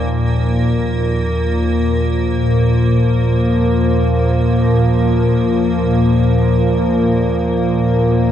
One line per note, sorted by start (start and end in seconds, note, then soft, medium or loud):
0.00 8.32 D#2 medium
0.00 8.32 A#2 medium
0.00 8.32 F3 medium
0.00 8.32 A#3 medium
0.00 1.83 D#4 medium
0.00 8.32 A#4 medium